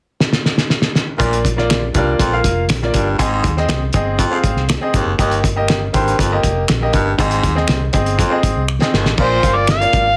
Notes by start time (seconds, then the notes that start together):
0.20 snare
0.33 snare
0.46 snare
0.58 snare
0.70 snare
0.82 snare
0.95 snare
1.18 A#1 A#2 A#3 F4 D5, kick, closed hi-hat
1.33 closed hi-hat
1.45 kick, closed hi-hat
1.57 A#3 F4 D5, snare
1.70 finger snap, snare, closed hi-hat
1.94 C2 G2 A#3 F4 D5, kick, closed hi-hat
2.19 A#1 F2, kick, closed hi-hat
2.32 A#3 F4 F5
2.44 F1, kick, closed hi-hat
2.68 A#1, finger snap, snare, closed hi-hat
2.82 A#3 F4 D5, snare
2.94 G1 G2, kick, closed hi-hat
3.18 G#1 G#2 C4 G#4 D#5, kick, closed hi-hat
3.44 D#2, kick, closed hi-hat
3.57 C4 G#4 D#5, snare
3.68 C2, finger snap, snare, closed hi-hat
3.93 G1 C4 G#4 D#5, kick, closed hi-hat
4.18 F2, kick, closed hi-hat
4.31 C4 G#4 F5
4.43 G#1, kick, closed hi-hat
4.55 C2, snare
4.69 finger snap, snare, closed hi-hat
4.81 C4 G#4 D#5
4.93 G1 D#2, kick, closed hi-hat
5.05 F#1
5.18 G1 D#2 A#3 G4 D#5, kick, closed hi-hat
5.31 closed hi-hat
5.44 kick, closed hi-hat
5.56 A#3 G4 D#5
5.68 finger snap, snare, closed hi-hat
5.93 G#1 G2 A#3 G4 C5, kick, closed hi-hat
6.08 closed hi-hat
6.18 G1 F2, kick, closed hi-hat
6.32 A#3 G4 D#5
6.43 F1, kick, closed hi-hat
6.68 A#1, finger snap, snare, closed hi-hat
6.81 A#3 G4 D#5
6.93 G1 G2, kick, closed hi-hat
7.18 G#1 G#2 C4 G#4 D#5, kick, closed hi-hat
7.31 closed hi-hat
7.43 D#2, kick, closed hi-hat
7.55 C4 G#4 D#5, snare
7.68 C2, finger snap, snare, closed hi-hat
7.93 G1 C4 G#4 D#5, kick, closed hi-hat
8.06 closed hi-hat
8.18 F2, kick, closed hi-hat
8.30 C4 G#4 D#5
8.43 G#1, kick, closed hi-hat
8.56 C2
8.68 finger snap
8.80 C4 G#4 D#5, snare
8.93 G1 D#2, snare
9.05 A1, snare
9.17 A#1 A#2 A#3 F4 D5, kick, crash
9.22 C5
9.43 G1 A#3 F4 F5, kick, closed hi-hat
9.56 D5
9.67 F5, finger snap, snare, closed hi-hat
9.80 A#3 F4 D5, closed hi-hat
9.93 G#1, kick, closed hi-hat